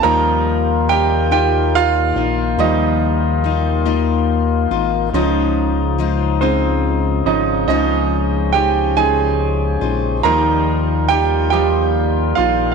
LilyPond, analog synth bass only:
\new Staff \with { instrumentName = "Analog synth bass" } { \clef bass \time 6/8 \key ees \mixolydian \tempo 4. = 47 ees,2~ ees,8 bes,,8 | ees,2~ ees,8 aes,,8 | des,2~ des,8 aes,,8 | des,2~ des,8 bes,,8 |
ees,2~ ees,8 bes,,8 | }